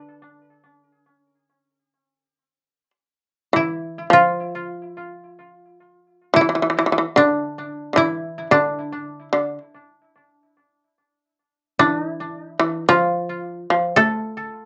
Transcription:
Already playing: D3 D4 A4 B4
3.53 E3 E4
4.10 F3 F4
6.34 E3 E4
6.41 E3
6.49 E3
6.55 E3
6.62 E3
6.70 E3
6.79 E3
6.86 E3
6.92 E3
6.98 E3
7.16 D3 D4
7.93 D3 E3
7.97 E4
8.51 D3 D4
9.33 D3
11.79 E3 D4
11.98 D#4
12.10 E4
12.60 E3
12.89 F3 F4
13.70 F3
13.96 A3 A4

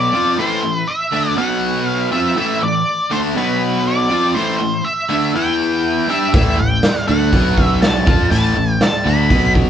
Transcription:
Already playing: B2 F#3 B3 D5
0.14 F3 C4 F4
0.39 A2 E3 A3 C5
0.64 A2 E3
0.77 B4
0.88 E5
1.12 D3 A3 D4
1.37 B2 F#3 B3 F#5
1.87 F5
2.11 F3 C4 F4 E5
2.36 A2 E3 A3 E5
2.62 A2 E3 D5
3.11 D3 A3 D4 C5
3.36 B2 F#3 B3 B4
3.87 D5
4.10 F3 C4 F4
4.35 A2 E3 A3 C5
4.60 A2 E3
4.85 E5
5.09 D3 A3 D4
5.35 E3 B3 E4 G5
6.09 G3 D4 G4 E5
6.33 A1 A2 E3 A3 E5, kick, open hi-hat
6.58 A1 A2 E3 G5
6.83 snare, open hi-hat
6.96 snare
7.08 D2 D3 A3 D4 F#5
7.32 B1 B2 F#3 B3, kick, open hi-hat
7.58 kick
7.65 E5
7.82 A5, snare, open hi-hat
8.06 F2 F3 C4 F4, kick
8.31 A1 A2 E3 A3 A5, open hi-hat
8.56 A1 A2 E3
8.81 A5, snare, open hi-hat
9.06 D2 D3 A3 D4 B5
9.30 B1 B2 F#3 B3, kick, open hi-hat
9.55 kick

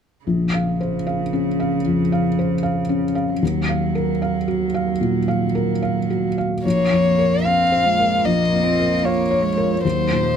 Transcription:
0.25 A#1 C#3
0.54 F5
0.81 C5
1.07 F5
1.33 C#4
1.60 F5
1.86 F2
2.12 F5
2.39 C5
2.63 F5
2.89 C#4
3.15 F5
3.40 D#2 F#3
3.69 F5
3.95 A#4
4.22 F5
4.48 F#4
4.74 F5
5.01 A#2
5.28 F5
5.55 A#4
5.82 F5
6.10 F#4
6.38 F5
6.64 A#1 A#3 F4 C#5
6.92 F2
7.18 A#4
7.44 C4 F5
7.72 C5
7.85 G#3
8.00 A#4
8.24 A#1 A#3 D#5
8.53 F2
8.63 C4
8.79 A#4
9.03 A#3 C#5 F5
9.31 C#5
9.42 G#3
9.57 A#4
9.82 D#2 F#3 A#3 D#4 C5
10.11 A#2
10.22 F3

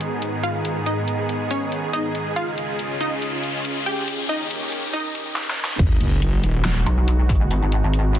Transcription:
Already playing: G#2 D#3 B3 C#4 G#4 C#5 D#5 A#5, riser
0.01 closed hi-hat
0.22 closed hi-hat
0.43 F4 F5, closed hi-hat
0.65 closed hi-hat
0.86 D#4 D#5, closed hi-hat
1.08 closed hi-hat
1.29 closed hi-hat
1.51 C#4 C#5, closed hi-hat
1.72 closed hi-hat
1.93 D#4 D#5, closed hi-hat
2.15 closed hi-hat
2.36 C#2 C#3 C#4 F4 F5, closed hi-hat
2.58 closed hi-hat
2.79 closed hi-hat
3.01 D#4 D#5, closed hi-hat
3.22 closed hi-hat
3.44 closed hi-hat
3.65 closed hi-hat
3.86 G4 G5, closed hi-hat
4.08 D#2 D#3 C#4 D#4 G4, closed hi-hat
4.24 A#4
4.29 D#4 D#5, closed hi-hat
4.51 closed hi-hat
4.72 closed hi-hat
4.93 D#4 D#5, closed hi-hat
5.15 closed hi-hat
5.36 snare
5.51 snare
5.65 snare
5.79 G#1 G#3 D#4 F#4 B4, kick, closed hi-hat, crash, sub drop
6.01 F#1, closed hi-hat
6.22 closed hi-hat
6.43 D#1, closed hi-hat
6.65 snare, closed hi-hat
6.86 B1, closed hi-hat
7.08 closed hi-hat
7.29 kick, open hi-hat
7.51 G#1, closed hi-hat
7.62 G#1
7.72 closed hi-hat
7.84 G#1
7.94 closed hi-hat
8.15 closed hi-hat

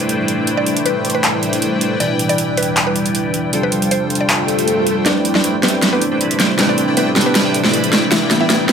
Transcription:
Already playing: A2 C3 E3 G3 A3 D4 E4 B4 C5 D5 G5
0.00 closed hi-hat
0.09 closed hi-hat
0.28 closed hi-hat
0.47 closed hi-hat
0.57 D5
0.66 closed hi-hat
0.77 closed hi-hat
0.86 B4, closed hi-hat
1.05 closed hi-hat
1.10 closed hi-hat
1.15 B4
1.24 clap, closed hi-hat
1.43 closed hi-hat
1.53 closed hi-hat
1.62 closed hi-hat
1.81 closed hi-hat
1.98 E2 B2 D3 E3 G3 D4 E4 B4 D5 G5, closed hi-hat
2.19 closed hi-hat
2.29 D5, closed hi-hat
2.38 closed hi-hat
2.57 B4, closed hi-hat
2.63 closed hi-hat
2.77 clap, closed hi-hat
2.87 B4
2.96 closed hi-hat
3.06 closed hi-hat
3.15 closed hi-hat
3.34 closed hi-hat
3.51 G2 C3 F3 G3 C4 F4 A4 C5 G5, closed hi-hat
3.55 D4
3.63 B4
3.72 closed hi-hat
3.82 closed hi-hat
3.91 C5, closed hi-hat
4.10 closed hi-hat
4.15 closed hi-hat
4.21 D5
4.29 clap, closed hi-hat, swell
4.48 closed hi-hat
4.59 closed hi-hat
4.68 closed hi-hat
4.87 closed hi-hat
5.04 A2 C3 E3 G3 A3 C4 D4 E4 B4 C5 D5 G5, snare, closed hi-hat, riser
5.08 B4
5.25 closed hi-hat
5.35 A3 D4 E4 B4 C5 D5 G5, snare
5.44 A3 E4 B4 C5 D5 G5, closed hi-hat
5.61 G3 A3 B3 C4 D4 E4 B4 C5 D5 G5, snare, closed hi-hat
5.68 closed hi-hat
5.82 A3 E4 B4 C5 D5 B5, snare, closed hi-hat
5.92 A3 B3 E4 B4 C5 D5 G5
6.02 closed hi-hat
6.11 A3 E4 B4 C5 D5 G5
6.20 A3 E4 B4 C5 D5 B5, closed hi-hat
6.31 closed hi-hat
6.39 A3 E4 B4 C5 D5 G5, snare, closed hi-hat
6.57 G3 A3 C4 D4 E4 B4 C5 D5 G5, snare, closed hi-hat
6.69 D4 D5
6.78 closed hi-hat
6.88 A3 E4 B4 C5 D5 G5
6.97 A3 B3 E4 B4 C5 D5 G5, closed hi-hat
7.14 C3 G3 A3 D4 E4 B4 C5 D5 G5, snare, closed hi-hat
7.18 B4, closed hi-hat
7.26 B3 B4
7.35 A3 E4 B4 C5 D5 B5, snare, closed hi-hat
7.45 A3 E4 B4 C5 D5 G5
7.54 closed hi-hat
7.64 A3 E4 B4 C5 D5 G5, snare
7.73 A3 E4 B4 C5 D5 B5, closed hi-hat
7.84 closed hi-hat
7.92 A3 E4 B4 C5 D5 G5, snare, closed hi-hat
8.10 E2 D3 E3 B3 D4 E4 G4 B4 D5 E5 G5, snare, closed hi-hat
8.31 snare, closed hi-hat
8.40 E3 E4 B4 D5 E5 G5
8.49 E3 E4 B4 D5 G5, snare, closed hi-hat
8.67 E3 B3 E4 B4 D5 G5, snare, closed hi-hat

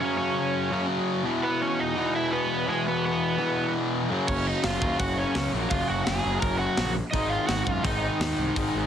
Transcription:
0.00 F#2 C#3 F#3 C#4 C#5
0.17 C#4 C#5
0.70 F#2 C#3 F#3
1.24 E2 B2 E3
1.43 B3 B4
1.61 C#4 C#5
1.80 D#4 D#5
1.95 E2 B2 E3
2.16 E4 E5
2.32 B3 B4
2.66 E2 B2 E3 G#3 G#4
2.88 B3 B4
3.05 B3 B4
3.38 E2 B2 E3
4.10 F#2 C#3 F#3
4.28 F#1 C#4 C#5, kick, crash
4.47 D#4 D#5
4.64 F#1 F4 F5, snare, open hi-hat
4.81 D#2 F#2 C#3 F#3, kick
4.99 F#1 F#4 F#5, kick, open hi-hat
5.17 C#4 C#5
5.35 C#2, snare, open hi-hat
5.53 A#1 F#2 C#3 F#3
5.70 F#1 F4 F5, kick, open hi-hat
5.88 F#1 F#4 F#5
6.04 F#1 G#4 G#5, snare, open hi-hat
6.24 F#1 F#2 C#3 F#3
6.40 F#1 A#4 A#5, kick, open hi-hat
6.59 F#4 F#5
6.77 A#1, snare, open hi-hat
7.11 G#1 G#2 D#3 D#4 D#5, kick, open hi-hat
7.15 G#3
7.29 F4 F5
7.47 G#1 F#4 F#5, snare, open hi-hat
7.65 F#2 F4 F5, kick
7.83 G#1 G#2 D#3 G#3 D#4 D#5, kick, open hi-hat
8.20 D#2, snare, open hi-hat
8.38 C2
8.56 G#1 G#2 D#3 G#3, kick, open hi-hat
8.75 G#1

